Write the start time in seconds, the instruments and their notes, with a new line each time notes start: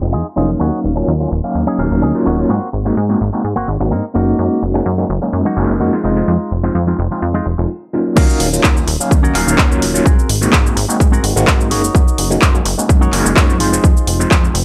0.01 analog synth bass F1, tine electric piano F3 G#3 C4 D#4 F4, muted clean electric guitar stroke
0.12 analog synth bass F2, clean electric guitar D#4 F4 G#4
0.36 analog synth bass F1, tine electric piano F#3 A#3 C#4 D#4 F5, clean electric guitar D#4 F4 G#4
0.60 analog synth bass D#2, clean electric guitar C#4 D#4 F#4
0.84 analog synth bass D#1
0.96 tine electric piano F#3 A#3 C#4 D#4 F4, muted clean electric guitar stroke
1.07 analog synth bass D#2, muted clean electric guitar stroke
1.20 tine electric piano F#3 A#3 C#4 D#4 F4, muted clean electric guitar stroke
1.31 analog synth bass D#1, muted clean electric guitar stroke
1.44 tine electric piano F#3 A#3 C#4 D#4 F5
1.55 analog synth bass D#2
1.67 clean electric guitar C#4 D#4 G#4
1.79 analog synth bass D#1, tine electric piano F#3 A#3 C#4 D#4 F5
1.91 analog synth bass D#1, muted clean electric guitar stroke
2.02 analog synth bass D#2, clean electric guitar C#4 D#4 G#4
2.14 tine electric piano F#3 A#3 C#4 D#4 F4
2.25 analog synth bass D#1, clean electric guitar C#4 D#4 F#4
2.38 tine electric piano F#3 A#3 C#4 D#4 F4
2.49 analog synth bass G#2, clean electric guitar A#3 C4 F#4
2.73 analog synth bass G#1
2.85 tine electric piano G#3 A#3 C4 D#4 F#4, muted clean electric guitar stroke
2.97 analog synth bass G#2, muted clean electric guitar stroke
3.09 tine electric piano G#3 A#3 C4 D#4 F#4, muted clean electric guitar stroke
3.20 analog synth bass G#1, muted clean electric guitar stroke
3.33 tine electric piano G#3 A#3 C4 D#4 F#4
3.44 analog synth bass G#2
3.56 analog synth bass G#1, clean electric guitar A#3 C4 F#4
3.68 analog synth bass G#1
3.80 analog synth bass G#1, tine electric piano G#3 A#3 C4 D#4 F#4, muted clean electric guitar stroke
3.91 analog synth bass G#2, clean electric guitar A#3 C4 D#4
4.14 analog synth bass F#1, tine electric piano G#3 A#3 C#4 D#4 F#4, clean electric guitar A#3 D#4 F#4
4.39 analog synth bass F#2
4.63 analog synth bass F#1
4.74 tine electric piano G#3 A#3 C#4 D#4 F#4, muted clean electric guitar stroke
4.85 analog synth bass F#2, muted clean electric guitar stroke
4.98 tine electric piano G#3 A#3 C#4 D#4 F#4, muted clean electric guitar stroke
5.09 analog synth bass F#1, muted clean electric guitar stroke
5.22 tine electric piano F#3 G#3 A#3 C#4 D#4
5.33 analog synth bass F#2
5.45 clean electric guitar A#3 D#4 F#4
5.56 analog synth bass F#1, tine electric piano G#3 A#3 C#4 D#4 F#4
5.69 analog synth bass F#1, muted clean electric guitar stroke
5.80 analog synth bass F#2, clean electric guitar A#3 D#4 F#4
5.92 tine electric piano F3 G#3 C4 D#4 F4
6.04 analog synth bass F1, clean electric guitar G#3 D#4 F4
6.16 tine electric piano F3 G#3 C4 D#4 F4
6.28 analog synth bass F2
6.51 analog synth bass F1
6.63 tine electric piano F3 G#3 C4 D#4 F4, muted clean electric guitar stroke
6.74 analog synth bass F2, muted clean electric guitar stroke
6.87 tine electric piano F3 G#3 C4 D#4 F4, muted clean electric guitar stroke
6.98 analog synth bass F1, muted clean electric guitar stroke
7.11 tine electric piano F3 G#3 C4 D#4 F4
7.22 analog synth bass F2
7.34 clean electric guitar G#3 D#4 F4
7.46 analog synth bass F1
7.58 analog synth bass F1, tine electric piano F3 G#3 C4 D#4 F4, muted clean electric guitar stroke
7.93 tine electric piano F#3 A#3 C#4 D#4 F4
8.16 analog synth bass D#2, tine electric piano F#3 A#3 C#4 D#4 F5, clean electric guitar C#4 D#4 F#4 A#4, kick, crash, shaker
8.30 shaker
8.40 analog synth bass D#1, open hi-hat
8.53 tine electric piano F#3 A#3 C#4 D#4 F4, shaker
8.63 analog synth bass D#2, clean electric guitar C#4 D#4 F#4 A#4, kick, clap, shaker
8.76 tine electric piano F#3 A#3 C#4 D#4 F4, shaker
8.87 analog synth bass D#1, muted clean electric guitar stroke, open hi-hat
9.00 tine electric piano F#3 A#3 C#4 D#4 F5, muted clean electric guitar stroke, shaker
9.11 analog synth bass D#2, kick, shaker
9.23 clean electric guitar C#4 D#4 F#4 A#4, shaker
9.34 analog synth bass D#1, tine electric piano F#3 A#3 C#4 D#4 F5, clap, open hi-hat
9.47 analog synth bass D#1, muted clean electric guitar stroke, shaker
9.58 analog synth bass D#2, clean electric guitar C#4 D#4 F#4 A#4, kick, clap, shaker
9.70 tine electric piano F#3 A#3 C#4 D#4 F4, shaker
9.82 analog synth bass D#1, open hi-hat
9.93 tine electric piano F#3 A#3 C#4 D#4 F4, shaker
10.05 analog synth bass G#2, clean electric guitar C4 F#4 G#4 A#4, kick, shaker
10.19 shaker
10.29 analog synth bass G#1, open hi-hat
10.41 tine electric piano G#3 A#3 C4 D#4 F#4, shaker
10.52 analog synth bass G#2, clean electric guitar C4 F#4 G#4 A#4, kick, clap, shaker
10.65 tine electric piano G#3 A#3 C4 D#4 F#4, shaker
10.76 analog synth bass G#1, muted clean electric guitar stroke, open hi-hat
10.88 tine electric piano G#3 A#3 C4 D#4 F#4, muted clean electric guitar stroke, shaker
10.99 analog synth bass G#2, muted clean electric guitar stroke, kick, shaker
11.12 clean electric guitar C4 F#4 G#4 A#4, shaker
11.23 analog synth bass G#1, tine electric piano G#3 A#3 C4 D#4 F#4, open hi-hat
11.36 analog synth bass G#1, tine electric piano G#3 A#3 C4 D#4 F#4, muted clean electric guitar stroke, shaker
11.47 analog synth bass G#2, clean electric guitar C4 F#4 G#4 A#4, kick, clap, shaker
11.61 shaker
11.70 analog synth bass F#1, tine electric piano G#3 A#3 C#4 D#4 G#4, clean electric guitar D#4 F#4 A#4 C#5, open hi-hat
11.84 shaker
11.95 analog synth bass F#2, kick, shaker
12.08 shaker
12.18 analog synth bass F#1, open hi-hat
12.30 tine electric piano G#3 A#3 C#4 D#4 F#4, shaker
12.42 analog synth bass F#2, clean electric guitar D#4 F#4 A#4 C5, kick, clap, shaker
12.54 tine electric piano G#3 A#3 C#4 D#4 F#4, shaker
12.65 analog synth bass F#1, muted clean electric guitar stroke, open hi-hat
12.78 tine electric piano G#3 A#3 C#4 D#4 F#4, muted clean electric guitar stroke, shaker
12.89 analog synth bass F#2, muted clean electric guitar stroke, kick, shaker
13.01 clean electric guitar D#4 F#4 A#4 C#5, shaker
13.12 analog synth bass F#1, tine electric piano G#3 A#3 C#4 D#4 F#4, clap, open hi-hat
13.25 analog synth bass F#1, muted clean electric guitar stroke, shaker
13.36 analog synth bass F#2, clean electric guitar D#4 F#4 A#4 C#5, kick, clap, shaker
13.49 tine electric piano F3 G#3 C4 D#4 F4, shaker
13.60 analog synth bass F1, clean electric guitar D#4 F4 G#4 C5, open hi-hat
13.72 tine electric piano F3 G#3 C4 D#4 F4, shaker
13.84 analog synth bass F2, kick, shaker
13.97 shaker
14.07 analog synth bass F1, open hi-hat
14.19 tine electric piano F3 G#3 C4 D#4 F4, shaker
14.30 analog synth bass F2, clean electric guitar D#4 F4 G#4 C5, kick, clap, shaker
14.43 tine electric piano F3 G#3 C4 D#4 F4, shaker
14.54 analog synth bass F1, muted clean electric guitar stroke, open hi-hat